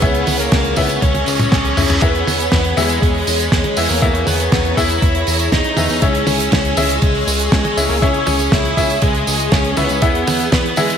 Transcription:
Already playing: lead electric guitar B3 B4, string machine G#4 C#5 C#6
0.02 analog synth bass C#2, grand piano C#4 E4 G#4 E5, kick, closed hi-hat, tambourine
0.15 closed hi-hat
0.27 analog synth bass C#2, open hi-hat, high tom, tambourine
0.39 lead electric guitar A#3 A#4, closed hi-hat, tambourine
0.52 analog synth bass C#2, kick, snare, closed hi-hat
0.65 closed hi-hat
0.76 analog synth bass C#2, lead electric guitar B3 B4, grand piano C#4 E4 G#4 E5, kick, open hi-hat, high tom, tambourine
0.89 closed hi-hat, tambourine
1.02 analog synth bass C#2, lead electric guitar C#4 C#5, kick, closed hi-hat, high tom, tambourine, reverse cymbal
1.15 closed hi-hat, high tom
1.26 analog synth bass C#2, open hi-hat, tambourine
1.40 closed hi-hat, mid tom, tambourine
1.52 analog synth bass C#2, lead electric guitar C#4 C#5, kick, snare, closed hi-hat, mid tom
1.65 closed hi-hat
1.77 analog synth bass C#2, grand piano C#4 E4 G#4 E5, mid tom, open hi-hat, tambourine
1.89 analog synth bass C#2, closed hi-hat, mid tom, tambourine
2.02 analog synth bass E2, grand piano B3 E4 G#4 E5, lead electric guitar B3 B4, string machine G#4 B5, kick, closed hi-hat, tambourine
2.15 closed hi-hat
2.27 analog synth bass E2, open hi-hat, high tom, tambourine
2.40 closed hi-hat, tambourine
2.52 analog synth bass E2, lead electric guitar B3 B4, kick, snare, closed hi-hat
2.65 closed hi-hat
2.77 analog synth bass E2, lead electric guitar G#3 G#4, grand piano B3 E4 G#4 E5, open hi-hat, high tom, tambourine
2.89 closed hi-hat, tambourine
3.02 analog synth bass E2, kick, closed hi-hat, tambourine
3.15 open hi-hat
3.27 analog synth bass E2, open hi-hat, tambourine
3.39 closed hi-hat, tambourine
3.52 analog synth bass E2, lead electric guitar G#3 G#4, kick, snare, closed hi-hat
3.64 closed hi-hat, high tom
3.77 analog synth bass E2, grand piano B3 E4 G#4 E5, open hi-hat, tambourine
3.89 analog synth bass E2, lead electric guitar A#3 A#4, tambourine
4.02 analog synth bass E2, grand piano B3 E4 G#4 E5, string machine A#5, kick, closed hi-hat, tambourine
4.15 closed hi-hat
4.27 analog synth bass E2, lead electric guitar B3 B4, open hi-hat, high tom, tambourine
4.40 closed hi-hat, tambourine
4.52 analog synth bass E2, kick, snare, closed hi-hat, tambourine
4.65 closed hi-hat
4.77 analog synth bass E2, grand piano B3 E4 G#4 E5, lead electric guitar E4 E5, kick, open hi-hat, tambourine
4.90 closed hi-hat, tambourine
5.02 analog synth bass E2, kick, closed hi-hat
5.15 closed hi-hat
5.27 analog synth bass E2, open hi-hat, tambourine
5.39 closed hi-hat, tambourine
5.52 analog synth bass E2, lead electric guitar D#4 D#5, kick, snare, closed hi-hat
5.64 closed hi-hat
5.77 analog synth bass E2, grand piano B3 E4 G#4 E5, open hi-hat, high tom, tambourine
5.89 analog synth bass E2, tambourine
6.02 analog synth bass C#2, grand piano C#4 E4 G#4 E5, lead electric guitar C#4 C#5, string machine C#6 E6, kick, closed hi-hat, tambourine
6.15 closed hi-hat
6.27 analog synth bass C#2, lead electric guitar C#4 C#5, open hi-hat, high tom, tambourine
6.40 closed hi-hat, tambourine
6.52 analog synth bass C#2, lead electric guitar C#4 C#5, kick, snare, closed hi-hat, tambourine
6.65 closed hi-hat
6.77 analog synth bass C#2, lead electric guitar G#3 G#4, grand piano C#4 E4 G#4 E5, open hi-hat, high tom, tambourine
6.89 closed hi-hat, tambourine
7.02 analog synth bass C#2, kick, closed hi-hat, tambourine
7.15 open hi-hat
7.27 analog synth bass C#2, open hi-hat, tambourine
7.39 closed hi-hat, tambourine
7.52 analog synth bass C#2, lead electric guitar G#3 G#4, kick, snare, closed hi-hat
7.65 closed hi-hat, high tom
7.77 analog synth bass C#2, grand piano C#4 E4 G#4 E5, open hi-hat, tambourine
7.89 analog synth bass C#2, lead electric guitar A#3 A#4, tambourine
8.02 analog synth bass C#2, grand piano C#4 E4 G#4 E5, lead electric guitar C#4 C#5, string machine D#6, kick, closed hi-hat, tambourine
8.14 closed hi-hat
8.27 analog synth bass C#2, lead electric guitar C#4 C#5, open hi-hat, high tom, tambourine
8.39 closed hi-hat, tambourine
8.52 analog synth bass C#2, lead electric guitar E4 E5, kick, snare, closed hi-hat
8.65 closed hi-hat
8.77 analog synth bass C#2, grand piano C#4 E4 G#4 E5, kick, open hi-hat, tambourine
8.90 closed hi-hat, tambourine
9.02 analog synth bass C#2, lead electric guitar G#3 G#4, kick, closed hi-hat, tambourine
9.15 closed hi-hat
9.27 analog synth bass C#2, open hi-hat, tambourine
9.39 closed hi-hat, tambourine
9.52 analog synth bass C#2, lead electric guitar C#4 C#5, kick, snare, closed hi-hat
9.64 closed hi-hat
9.77 analog synth bass C#2, lead electric guitar B3 B4, grand piano C#4 E4 G#4 E5, open hi-hat, high tom, tambourine
9.89 analog synth bass C#2, closed hi-hat, tambourine
10.02 analog synth bass E2, grand piano B3 E4 G#4 E5, string machine G#5, kick, closed hi-hat, tambourine
10.15 closed hi-hat
10.27 analog synth bass E2, open hi-hat, high tom, tambourine
10.40 closed hi-hat, tambourine
10.52 analog synth bass E2, lead electric guitar B3 B4, kick, snare, closed hi-hat
10.66 closed hi-hat
10.76 analog synth bass E2, lead electric guitar G#3 G#4, grand piano B3 E4 G#4 E5, open hi-hat, high tom, tambourine
10.90 closed hi-hat, tambourine

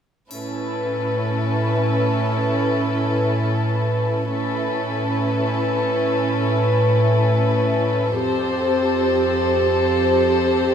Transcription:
0.31 cello section A2, viola section C#4 E4, violin section A4 B4, triangle
4.29 cello section A2, viola section C#4 E4, violin section A4 B4
8.18 cello section F2, viola section C4 G4, violin section A4 C5

